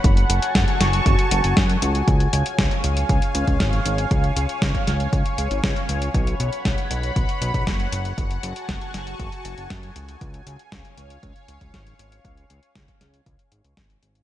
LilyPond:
<<
  \new Staff \with { instrumentName = "Analog synth pad" } { \time 4/4 \key cis \phrygian \tempo 4 = 118 << { <fis' fis'' a'' cis'''>1 | eis''1~ | eis''1 | <fis'' b''>1 |
<fis' a'' cis'''>1 | eis''1~ | eis''1 | } \\ { gis''1 | cis''1~ | cis''1~ | cis''1 |
gis''1 | cis''1~ | cis''1 | } >> }
  \new Staff \with { instrumentName = "Analog synth bass" } { \clef bass \time 4/4 \key cis \phrygian fis,,8 fis,,16 r16 fis,,16 r16 fis,,8 fis,,16 r16 fis,,16 fis,,16 fis,8 cis,8 | cis,8 cis,16 r16 cis,16 r16 cis,8 cis,16 r16 cis,16 cis,16 gis,,8 gis,,8 | cis,8 cis,16 r16 cis,16 r16 cis,8 cis,16 r16 cis,16 gis,,16 cis,16 r16 cis,8 | b,,8 b,,16 r16 b,,16 r16 b,,8 b,,16 r16 b,,16 b,,16 fis,,8 fis,,8 |
fis,,8 fis,,16 r16 fis,,16 r16 fis,,8 fis,,16 r16 fis,,16 fis,,16 fis,8 cis,8 | cis,8 cis,16 r16 cis,16 r16 cis,8 cis,16 r16 cis,16 cis,16 gis,,8 gis,,8 | cis,8 cis,16 r16 cis,16 r16 cis,8 cis,16 r16 gis,,16 cis,16 gis,,8 gis,,8 | }
  \new DrumStaff \with { instrumentName = "Drums" } \drummode { \time 4/4 <hh bd>16 hh16 hh16 hh16 <hh bd sn>16 hh16 <hh sn>16 hh16 <hh bd>16 hh16 hh16 hh16 <hh bd sn>16 hh16 hh16 hh16 | <hh bd>16 hh16 hh16 hh16 <hh bd sn>16 hh16 hh16 hh16 <hh bd>16 hh16 hh16 <hh bd>16 <hh bd sn>16 hh16 hh16 hh16 | <hh bd>16 hh16 hh16 hh16 <hh bd sn>16 <hh bd>16 <hh sn>16 hh16 <hh bd>16 hh16 hh16 hh16 <hh bd sn>16 hh16 hh16 hh16 | <hh bd>16 hh16 hh16 hh16 <hh bd sn>16 hh16 hh16 hh16 <hh bd>16 hh16 hh16 <hh bd>16 <hh bd sn>16 hh16 hh16 hh16 |
<hh bd>16 hh16 hh16 hh16 <hh bd sn>16 hh16 <hh sn>16 hh16 <hh bd>16 hh16 hh16 hh16 <hh bd sn>16 hh16 hh16 hh16 | <hh bd>16 hh16 hh16 hh16 <hh bd sn>16 hh16 hh16 hh16 <hh bd>16 hh16 hh16 <hh bd>16 <hh bd sn>16 hh16 hh16 hh16 | <hh bd>16 hh16 hh16 hh16 <hh bd sn>16 <hh bd>16 <hh sn>16 hh16 <hh bd>16 hh16 hh16 hh16 <hh bd sn>16 hh16 hh16 hh16 | }
>>